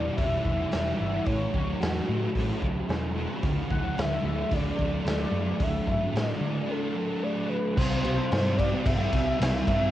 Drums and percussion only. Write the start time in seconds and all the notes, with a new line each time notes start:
0.18 kick, open hi-hat
0.45 kick
0.72 snare, open hi-hat
1.26 kick, open hi-hat
1.54 kick
1.82 snare, open hi-hat
2.35 kick, open hi-hat
2.62 kick
2.89 snare, open hi-hat
3.43 kick, open hi-hat
3.71 kick
3.98 snare, open hi-hat
4.51 kick, open hi-hat
4.79 kick
5.06 snare, open hi-hat
5.60 kick, open hi-hat
5.87 kick
6.16 snare, open hi-hat
7.77 kick, crash
8.04 crash
8.32 snare, crash
8.59 kick, crash
8.86 kick, crash
9.13 kick, crash
9.41 snare, crash
9.67 kick, crash